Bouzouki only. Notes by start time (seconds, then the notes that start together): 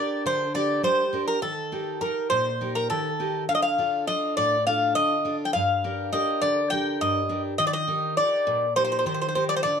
Already playing: D5
0.26 C5
0.55 D5
0.84 C5
1.28 A#4
1.42 A4
2.01 A#4
2.30 C5
2.75 A#4
2.90 A4
3.49 F5
3.55 D#5
3.62 F5
4.07 D#5
4.37 D5
4.67 F5
4.95 D#5
5.45 G5
5.53 F5
6.13 D#5
6.42 D5
6.70 G5
7.01 D#5
7.58 D#5
7.67 D5
7.73 D#5
8.17 D5
8.76 C5
8.85 C5
8.92 C5
8.99 C5
9.06 C5
9.14 C5
9.22 C5
9.29 C5
9.35 C5
9.49 D5
9.57 C5
9.63 D5